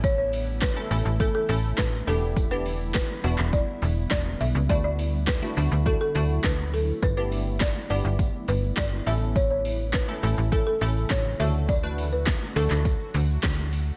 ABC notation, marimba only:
X:1
M:4/4
L:1/16
Q:1/4=103
K:D
V:1 name="Marimba"
c c3 B4 A A3 B2 A2- | A B3 B4 d4 d2 e2 | d d3 B4 A A3 B2 A2 | B B3 d2 d4 B2 d2 e2 |
c c3 B4 A A3 c2 e2 | d3 B3 A8 z2 |]